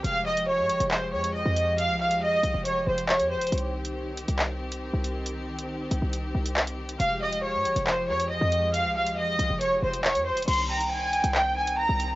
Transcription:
<<
  \new Staff \with { instrumentName = "Flute" } { \time 4/4 \key c \phrygian \tempo 4 = 138 r1 | r1 | r1 | r1 |
r1 | r1 | r8 g''2.~ g''8 | }
  \new Staff \with { instrumentName = "Violin section" } { \time 4/4 \key c \phrygian f''8 ees''8 des''4 c''8 des''8 ees''4 | f''8 f''8 ees''4 des''8 c''8 des''8 c''8 | r1 | r1 |
f''8 ees''8 des''4 c''8 des''8 ees''4 | f''8 f''8 ees''4 des''8 c''8 des''8 c''8 | c'''8 bes''8 aes''4 g''8 aes''8 bes''4 | }
  \new Staff \with { instrumentName = "String section" } { \clef bass \time 4/4 \key c \phrygian << { g'1~ | g'1~ | g'1~ | g'1~ |
g'1~ | g'1 | g1 | } \\ { <f aes>1~ | <f aes>1 | <ees c'>1~ | <ees c'>1 |
<f aes>1~ | <f aes>1 | <ees c'>1 | } >> }
  \new Staff \with { instrumentName = "808-style bass" } { \clef bass \time 4/4 \key c \phrygian f,,4~ f,,16 aes,16 f,,16 f,,8. f,8. f,8.~ | f,16 c,8~ c,32 f,8~ f,32 c,16 f,,8. f,,8. f,16. f,,16. | c,4.~ c,16 c,4. c,8.~ | c,4. c,16 c,8. c,4. |
f,,4~ f,,16 aes,16 f,,16 f,,8. f,8. f,8.~ | f,16 c,8~ c,32 f,8~ f,32 c,16 f,,8. f,,8. f,16. f,,16. | c,4.~ c,16 c,4. c,8. | }
  \new DrumStaff \with { instrumentName = "Drums" } \drummode { \time 4/4 hh8. hh16 r8 hh16 hh16 hc8. hh16 r8 hh8 | hh8. hh16 r8 hh8 hh8. hh16 hc16 hh8 hh32 hh32 | hh32 hh8 r32 hh16 r8 hh16 hh16 hc8. hh16 r8 hh8 | hh8. hh16 r8 hh8 hh8. hh16 hc16 hh8 hh16 |
hh8. hh16 r8 hh16 hh16 hc8. hh16 r8 hh8 | hh8. hh16 r8 hh8 hh8. hh16 hc16 hh8 hh32 hh32 | <cymc hh>32 hh8 r32 hh16 r8 hh16 hh16 hc8. hh16 r8 hh8 | }
>>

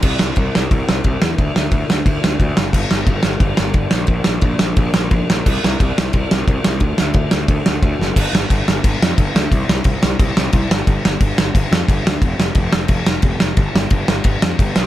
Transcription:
<<
  \new Staff \with { instrumentName = "Picked electric bass" } { \clef bass \time 4/4 \key c \major \tempo 4 = 177 c,8 c,8 c,8 c,8 c,8 c,8 c,8 e,8 | d,8 d,8 d,8 d,8 d,8 d,8 d,8 fis,,8 | g,,8 g,,8 g,,8 g,,8 g,,8 g,,8 g,,8 bes,,8 | bes,,8 bes,,8 bes,,8 bes,,8 bes,,8 bes,,8 bes,,8 bes,,8 |
c,8 c,8 c,8 c,8 c,8 c,8 c,8 c,8 | d,8 d,8 d,8 d,8 d,8 d,8 d,8 fis,,8 | g,,8 g,,8 g,,8 g,,8 g,,8 f,8 g,,8 d,8 | c,8 c,8 c,8 c,8 c,8 c,8 c,8 g,,8 |
g,,8 g,,8 g,,8 g,,8 g,,8 f,8 g,,8 d,8 | f,,8 f,,8 f,,8 f,,8 f,,8 f,,8 f,,8 f,,8 | g,,8 g,,8 g,,8 g,,8 g,,8 f,8 g,,8 b,,8 | }
  \new DrumStaff \with { instrumentName = "Drums" } \drummode { \time 4/4 <cymc bd>8 sn8 <bd cymr>8 sn8 <bd cymr>8 sn8 <bd cymr>8 sn8 | <bd cymr>8 sn8 <bd cymr>8 sn8 <bd cymr>8 sn8 <bd cymr>8 sn8 | <cymc bd>8 sn8 <bd cymr>8 sn8 <bd cymr>8 sn8 <bd cymr>8 sn8 | <bd cymr>8 sn8 <bd cymr>8 sn8 <bd cymr>8 sn8 <bd cymr>8 sn8 |
<cymc bd>8 sn8 <bd cymr>8 sn8 <bd cymr>8 sn8 <bd cymr>8 sn8 | <bd cymr>8 sn8 <bd cymr>8 sn8 <bd cymr>8 sn8 <bd cymr>8 sn8 | <cymc bd>8 sn8 <cymc bd>8 sn8 <cymc bd>8 sn8 <cymc bd>8 sn8 | <cymc bd>8 sn8 <cymc bd>8 sn8 <cymc bd>8 sn8 <cymc bd>8 sn8 |
<cymc bd>8 sn8 <cymc bd>8 sn8 <cymc bd>8 sn8 <cymc bd>8 sn8 | <cymc bd>8 sn8 <cymc bd>8 sn8 <cymc bd>8 sn8 <cymc bd>8 sn8 | <cymc bd>8 sn8 <cymc bd>8 sn8 <cymc bd>8 sn8 <cymc bd>8 sn8 | }
>>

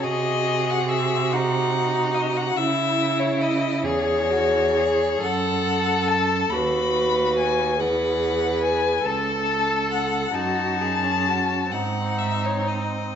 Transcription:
<<
  \new Staff \with { instrumentName = "Violin" } { \time 6/8 \key cis \minor \tempo 4. = 47 dis''8. fis''16 e''8 fis''4 dis''16 fis''16 | e''8. cis''16 dis''8 cis''4. | fis''4 a''8 b''4 gis''8 | fis''4 gis''8 a''4 fis''8 |
a''4. fis''8 e''16 cis''16 dis''8 | }
  \new Staff \with { instrumentName = "Violin" } { \time 6/8 \key cis \minor gis'4. dis'4. | e'4. gis'8 fis'8 gis'8 | a'4. b'4. | b'4. a'4. |
fis'8 gis'8 fis'8 dis'4. | }
  \new Staff \with { instrumentName = "Viola" } { \time 6/8 \key cis \minor fis'2. | e'4. gis'4. | a'4. fis'4. | gis'4. a'4. |
dis'8. cis'8. bis4. | }
  \new Staff \with { instrumentName = "Cello" } { \clef bass \time 6/8 \key cis \minor bis,2. | cis4. e,4. | fis,4. dis,4. | e,4. cis,4. |
fis,4. gis,4. | }
>>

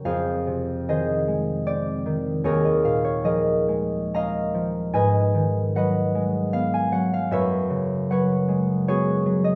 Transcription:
<<
  \new Staff \with { instrumentName = "Harp" } { \time 3/4 \key ees \major \tempo 4 = 76 << { <f'' g''>4 ees''4 d''4 | des''16 ees''16 f''16 des''16 ees''4 bes''4 | aes''4 ges''4 f''16 aes''16 ges''16 f''16 | fes''4 ges''4 des''8. ees''16 | } \\ { <f' aes' c''>4 <aes' c''>2 | <aes' bes'>4 <aes' bes'>4 <ees'' f''>4 | <ces'' ees''>4 <ces'' ees''>2 | <ces'' des''>4 <ces'' des''>4 <ges' aes'>4 | } >> }
  \new Staff \with { instrumentName = "Harp" } { \clef bass \time 3/4 \key ees \major << { f,8 c8 ees8 aes8 c'8 ees8 | ees,8 bes,8 f8 aes8 des'8 f8 | aes,8 ees8 ges8 aes8 ces'8 ges8 | ges,8 des8 ges8 aes8 ces'8 ges8 | } \\ { f2.~ | f2. | r2. | r2. | } >> }
>>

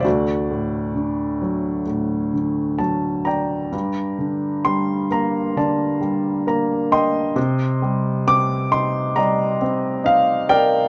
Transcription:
<<
  \new Staff \with { instrumentName = "Upright piano" } { \time 4/4 \key g \minor \tempo 4 = 66 << { d''2 r4 a''8 bes''8~ | bes''4 c'''8 bes''8 a''8 r8 bes''8 c'''8~ | c'''4 d'''8 c'''8 bes''8 r8 f''8 g''8 | } \\ { <fis' a'>2 r4. <d'' g''>8~ | <d'' g''>4. r8 d''4. <ees'' g''>8~ | <ees'' g''>4. r8 <d'' ees''>4. <bes' d''>8 | } >> }
  \new Staff \with { instrumentName = "Upright piano" } { \clef bass \time 4/4 \key g \minor d,8 a,8 d8 fis8 a,8 d8 fis4 | g,8 d8 g8 bes8 d8 g8 bes4 | c8 g8 c'8 ees'8 g8 c'8 ees'4 | }
>>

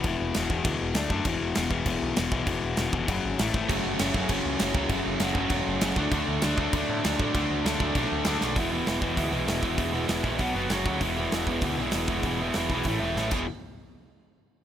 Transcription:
<<
  \new Staff \with { instrumentName = "Overdriven electric guitar" } { \clef bass \time 4/4 \key e \mixolydian \tempo 4 = 197 r1 | r1 | r1 | <fis, cis fis a cis'>4 <fis, cis fis a cis'>8 <fis, cis fis a cis'>8 <fis, cis fis a cis'>4 <fis, cis fis a cis'>8 <fis, cis fis a cis'>8 |
<fis, cis fis a cis'>4 <fis, cis fis a cis'>8 <fis, cis fis a cis'>8 <fis, cis fis a cis'>4 <fis, cis fis a cis'>8 <d fis a d'>8 | <d fis a d'>4 <d fis a d'>8 <d fis a d'>8 <d fis a d'>4 <d fis a d'>8 <d fis a d'>8 | <d fis a d'>4 <d fis a d'>8 <d fis a d'>8 <d fis a d'>4 <d fis a d'>8 <d fis a d'>8 | <e gis b e'>8 <e gis b e'>8 <e gis b e'>8 <e gis b e'>8 <e gis b e'>8 <e gis b e'>8 <e gis b e'>8 <e gis b e'>8 |
<e gis b e'>8 <e gis b e'>8 <e gis b e'>8 <e gis b e'>8 <b, fis b fis'>8 <b, fis b fis'>8 <fis cis' fis' cis''>8 <fis cis' fis' cis''>8 | <e gis b e'>8 <e gis b e'>8 <e gis b e'>8 <e gis b e'>8 <e gis b e'>8 <e gis b e'>8 <e gis b e'>8 <e gis b e'>8 | <e gis b e'>8 <e gis b e'>8 <e gis b e'>8 <e gis b e'>8 <a, e a e'>8 <a, e a e'>8 <a, e a e'>8 <e gis b e' gis'>8 | r1 | }
  \new Staff \with { instrumentName = "Distorted electric guitar" } { \clef bass \time 4/4 \key e \mixolydian <e, b, e>4 <e, b, e>8 <e, b, e>8 <e, b, e>4 <d a d'>8 <d a d'>8 | <e, b, e>4 <e, b, e>8 <e, b, e>8 <e, b, e>4 <e, b, e>8 <e, b, e>8 | <e, b, e>4 <e, b, e>8 <e, b, e>8 <fis, cis fis>4 <a, e a>8 <a, e a>8 | <fis, cis fis>4 <fis, cis fis>8 <fis, cis fis>8 <fis, cis fis>4 <fis, cis fis>8 <fis, cis fis>8 |
<fis, cis fis>4 <fis, cis fis>8 <fis, cis fis>8 <fis, cis fis>4 <fis, cis fis>8 <d a d'>8 | <d a d'>4 <d a d'>8 <d a d'>8 <d a d'>4 <d a d'>8 <d a d'>8 | <d a d'>4 <d a d'>8 <d a d'>8 <d a d'>4 <d a d'>8 <d a d'>8 | <e, b, e>8 <e, b, e>8 <e, b, e>8 <e, b, e>8 <e, b, e>8 <e, b, e>8 <e, b, e>8 <e, b, e>8 |
<e, b, e>8 <e, b, e>8 <e, b, e>8 <e, b, e>8 <b, fis b>8 <b, fis b>8 <fis, cis fis>8 <fis, cis fis>8 | <e, b, e>8 <e, b, e>8 <e, b, e>8 <e, b, e>8 <e, b, e>8 <e, b, e>8 <e, b, e>8 <e, b, e>8 | <e, b, e>8 <e, b, e>8 <e, b, e>8 <e, b, e>8 <a, e a>8 <a, e a>8 <a, e a>8 <e, b, e>8 | r1 | }
  \new Staff \with { instrumentName = "Picked electric bass" } { \clef bass \time 4/4 \key e \mixolydian e,,8 e,,8 e,,8 e,,8 d,8 e,,8 d,8 fis,8 | e,,8 e,,8 e,,8 e,,8 e,,8 b,,8 e,,8 b,,8 | e,,8 e,,8 e,,8 f,,8 fis,,8 gis,,8 a,,8 gis,,8 | fis,,8 fis,,8 fis,,8 fis,,8 fis,,8 cis,8 fis,,8 cis,8 |
fis,,8 fis,,8 fis,,8 fis,,8 e,,8 fis,,8 fis,,8 d,8 | d,8 d,8 d,8 d,8 d,8 a,8 d,8 a,8 | d,8 d,8 d,8 d,8 b,,8 d,8 d,8 b,,8 | e,,4 e,,8 e,,8 d,8 b,,8 e,,8 r8 |
e,,4 e,,8 ais,,8 b,,8 fis,,8 fis,,8 d,8 | e,,4 e,,8 e,,8 d,8 b,,8 e,,8 e,,8 | e,,4 e,,8 b,,8 a,,8 e,,8 a,,8 e,,8 | r1 | }
  \new DrumStaff \with { instrumentName = "Drums" } \drummode { \time 4/4 <cymc bd>4 <cymc sn>8 bd8 <cymc bd>4 <cymc sn>8 bd8 | <cymc bd>4 <cymc sn>8 bd8 <cymc bd>4 <cymc sn>8 bd8 | <cymc bd>4 <cymc sn>8 bd8 <cymc bd>4 <cymc sn>8 bd8 | <cymc bd>4 <cymc sn>8 bd8 <cymc bd>4 <cymc sn>8 bd8 |
<cymc bd>4 <cymc sn>8 bd8 <cymc bd>4 <cymc sn>8 bd8 | <cymc bd>4 <cymc sn>8 bd8 <cymc bd>4 <cymc sn>8 bd8 | <cymc bd>4 <cymc sn>8 bd8 <cymc bd>4 <cymc sn>8 sn8 | <hho bd>4 <hho sn>8 bd8 <hho bd>4 <hho sn>8 bd8 |
<hho bd>4 <hho sn>8 bd8 <hho bd>4 <hho sn>8 bd8 | <hho bd>4 <hho sn>8 bd8 <hho bd>4 <hho sn>8 bd8 | <hho bd>4 <hho sn>8 bd8 <hho bd>4 sn8 <cymc bd>8 | r4 r4 r4 r4 | }
>>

